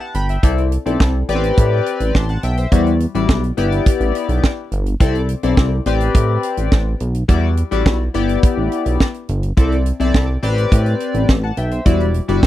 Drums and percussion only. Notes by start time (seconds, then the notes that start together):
0.14 closed hi-hat
0.29 closed hi-hat
0.43 kick, closed hi-hat
0.58 closed hi-hat
0.72 closed hi-hat
0.86 closed hi-hat
1.00 kick, snare
1.29 closed hi-hat
1.44 closed hi-hat
1.58 kick, closed hi-hat
1.86 closed hi-hat
2.00 closed hi-hat
2.15 kick, snare
2.29 closed hi-hat
2.43 closed hi-hat
2.57 closed hi-hat
2.72 kick, closed hi-hat
2.87 closed hi-hat
3.00 closed hi-hat
3.15 closed hi-hat
3.29 kick, snare
3.44 closed hi-hat
3.57 closed hi-hat
3.72 closed hi-hat
3.86 kick, closed hi-hat
4.00 closed hi-hat
4.15 closed hi-hat
4.29 closed hi-hat
4.44 kick, snare
4.72 closed hi-hat
4.86 closed hi-hat
5.00 kick, closed hi-hat
5.15 closed hi-hat
5.29 closed hi-hat
5.43 closed hi-hat
5.57 kick, snare
5.86 closed hi-hat
6.00 closed hi-hat
6.15 kick, closed hi-hat
6.43 closed hi-hat
6.57 closed hi-hat
6.72 kick, snare
7.00 closed hi-hat
7.14 closed hi-hat
7.29 kick, closed hi-hat
7.57 closed hi-hat
7.72 closed hi-hat
7.86 kick, snare
8.14 closed hi-hat
8.29 closed hi-hat
8.43 kick, closed hi-hat
8.72 closed hi-hat
8.86 closed hi-hat
9.00 kick, snare
9.14 closed hi-hat
9.29 closed hi-hat
9.43 closed hi-hat
9.57 kick, closed hi-hat
9.72 closed hi-hat
9.86 closed hi-hat
10.00 closed hi-hat
10.14 kick, snare
10.43 closed hi-hat
10.58 closed hi-hat
10.72 kick, closed hi-hat
10.86 closed hi-hat
11.00 closed hi-hat
11.14 closed hi-hat
11.29 kick, snare
11.57 closed hi-hat
11.71 closed hi-hat
11.86 kick, closed hi-hat
12.00 closed hi-hat
12.14 closed hi-hat
12.29 closed hi-hat
12.43 kick, snare